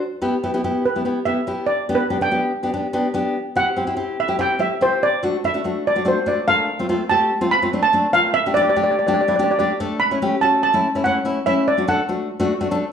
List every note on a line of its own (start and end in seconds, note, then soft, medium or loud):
0.22 0.35 B3 medium
0.22 0.35 E4 medium
0.22 0.35 G4 medium
0.44 0.50 B3 medium
0.44 0.50 E4 medium
0.44 0.50 G4 medium
0.54 0.60 B3 medium
0.54 0.60 E4 medium
0.54 0.60 G4 medium
0.64 0.83 B3 medium
0.64 0.83 E4 medium
0.64 0.83 G4 medium
0.85 1.29 B4 medium
0.95 1.02 B3 medium
0.95 1.02 E4 medium
0.95 1.02 G4 medium
1.05 1.18 B3 medium
1.05 1.19 E4 medium
1.05 1.19 G4 medium
1.25 1.39 B3 medium
1.25 1.39 E4 medium
1.25 1.39 G4 medium
1.25 1.65 E5 medium
1.47 1.68 B3 medium
1.47 1.69 E4 medium
1.47 1.69 G4 medium
1.66 1.94 D5 medium
1.89 2.02 B3 medium
1.89 2.02 D4 medium
1.89 2.02 G4 medium
1.95 2.22 B4 medium
2.10 2.17 B3 medium
2.10 2.17 D4 medium
2.10 2.17 G4 medium
2.21 2.27 B3 medium
2.21 2.27 D4 medium
2.21 2.27 A4 medium
2.21 2.82 G5 loud
2.31 2.50 B3 medium
2.31 2.50 D4 medium
2.31 2.50 G4 medium
2.63 2.69 B3 medium
2.63 2.69 D4 medium
2.63 2.69 G4 medium
2.74 2.86 B3 medium
2.74 2.86 D4 medium
2.74 2.86 G4 medium
2.93 3.06 B3 medium
2.93 3.06 D4 medium
2.93 3.06 G4 medium
3.14 3.35 B3 medium
3.14 3.35 D4 medium
3.14 3.35 G4 medium
3.56 3.69 C4 medium
3.56 3.69 E4 medium
3.56 3.69 G4 medium
3.56 4.21 F#5 loud
3.76 3.83 C4 medium
3.76 3.83 E4 medium
3.76 3.83 G4 medium
3.87 3.94 C4 medium
3.87 3.94 E4 medium
3.87 3.94 G4 medium
3.96 4.16 C4 medium
3.96 4.16 E4 medium
3.96 4.16 G4 medium
4.20 4.39 E5 medium
4.28 4.35 C4 medium
4.28 4.35 E4 medium
4.28 4.35 G4 medium
4.39 4.52 C4 medium
4.39 4.52 E4 medium
4.39 4.52 G4 medium
4.39 4.62 G5 medium
4.59 4.73 C4 medium
4.59 4.72 E4 medium
4.59 4.73 G4 medium
4.59 4.80 E5 medium
4.81 5.02 C4 medium
4.81 5.02 E4 medium
4.81 5.02 G4 medium
4.81 5.03 C5 medium
5.03 5.22 D5 loud
5.23 5.36 A3 medium
5.23 5.36 D4 medium
5.23 5.36 F#4 medium
5.44 5.50 A3 medium
5.44 5.50 D4 medium
5.44 5.50 E4 medium
5.44 5.83 E5 medium
5.54 5.60 A3 medium
5.54 5.61 D4 medium
5.54 5.61 F#4 medium
5.64 5.83 A3 medium
5.64 5.83 D4 medium
5.64 5.83 F#4 medium
5.87 5.96 D5 medium
5.96 6.02 A3 medium
5.96 6.02 D4 medium
5.96 6.02 F#4 medium
6.05 6.18 A3 medium
6.05 6.18 D4 medium
6.05 6.18 F#4 medium
6.05 6.29 C5 medium
6.26 6.39 A3 medium
6.26 6.39 D4 medium
6.26 6.39 F#4 medium
6.26 6.66 D5 medium
6.48 6.69 A3 medium
6.48 6.69 D4 medium
6.48 6.69 A4 medium
6.48 7.06 F5 loud
6.79 6.85 A3 medium
6.79 6.86 C4 medium
6.79 6.86 F4 medium
6.89 7.02 A3 medium
6.89 7.02 C4 medium
6.89 7.02 F4 medium
7.09 7.29 A3 medium
7.09 7.29 C4 medium
7.09 7.29 G4 medium
7.09 7.53 A5 loud
7.41 7.54 A3 medium
7.41 7.54 C4 medium
7.41 7.54 F4 medium
7.51 7.84 B5 loud
7.62 7.68 A3 medium
7.62 7.69 C4 medium
7.62 7.69 F4 medium
7.73 7.86 A3 medium
7.73 7.86 C4 medium
7.73 7.86 D4 medium
7.83 8.15 A5 loud
7.93 8.06 A3 medium
7.93 8.06 C4 medium
7.93 8.06 D4 medium
8.13 8.33 A3 medium
8.13 8.33 C4 medium
8.13 8.33 F4 medium
8.13 8.33 F5 loud
8.34 8.56 E5 loud
8.46 8.52 A3 medium
8.46 8.52 D4 medium
8.46 8.52 G4 medium
8.54 8.69 A3 medium
8.54 8.69 D4 medium
8.54 8.69 G4 loud
8.54 8.61 D5 loud
8.62 8.68 D5 medium
8.69 8.75 D5 medium
8.76 8.95 A3 medium
8.76 8.95 D4 medium
8.76 8.95 G4 medium
8.76 8.82 D5 medium
8.84 8.90 D5 medium
8.91 8.98 D5 medium
8.99 9.06 D5 medium
9.07 9.20 A3 medium
9.07 9.20 D4 medium
9.07 9.20 G4 medium
9.07 9.13 D5 medium
9.14 9.20 D5 medium
9.21 9.27 D5 medium
9.28 9.34 A3 medium
9.28 9.35 D4 medium
9.28 9.34 E4 medium
9.28 9.35 D5 medium
9.36 9.52 A3 medium
9.36 9.52 D4 medium
9.36 9.52 G4 medium
9.36 9.43 D5 medium
9.44 9.50 D5 medium
9.51 9.58 D5 medium
9.59 9.72 A3 medium
9.59 9.72 D4 medium
9.59 9.72 G4 medium
9.59 9.66 D5 medium
9.80 9.99 A3 medium
9.80 9.99 D4 medium
9.80 9.99 A4 loud
10.00 10.43 B5 loud
10.11 10.18 A3 medium
10.11 10.18 C#4 medium
10.11 10.18 E4 medium
10.22 10.35 A3 medium
10.22 10.35 C#4 medium
10.22 10.35 G4 loud
10.41 10.61 A3 medium
10.41 10.61 C#4 medium
10.41 10.61 F#4 medium
10.41 10.62 A5 loud
10.63 11.02 A5 medium
10.73 10.86 A3 medium
10.73 10.86 C#4 medium
10.73 10.86 E4 medium
10.95 11.01 A3 medium
10.95 11.01 C#4 medium
10.95 11.01 E4 medium
11.04 11.18 A3 medium
11.04 11.18 C#4 medium
11.04 11.18 E4 medium
11.04 11.43 F#5 medium
11.25 11.38 A3 medium
11.25 11.38 C#4 medium
11.25 11.38 E4 medium
11.46 11.65 A3 medium
11.46 11.65 C#4 medium
11.46 11.65 E4 loud
11.46 11.66 E5 medium
11.68 11.89 D5 medium
11.77 11.84 A3 medium
11.77 11.84 D4 medium
11.77 11.84 F#4 medium
11.88 12.01 A3 medium
11.88 12.01 D4 medium
11.88 12.01 A4 loud
11.88 12.92 F#5 medium
12.09 12.28 A3 medium
12.09 12.28 D4 medium
12.09 12.28 F#4 medium
12.40 12.53 A3 loud
12.40 12.53 D4 medium
12.40 12.53 F#4 loud
12.61 12.67 A3 medium
12.61 12.67 D4 medium
12.61 12.67 F#4 medium
12.71 12.84 A3 loud
12.71 12.84 D4 medium
12.71 12.84 A4 loud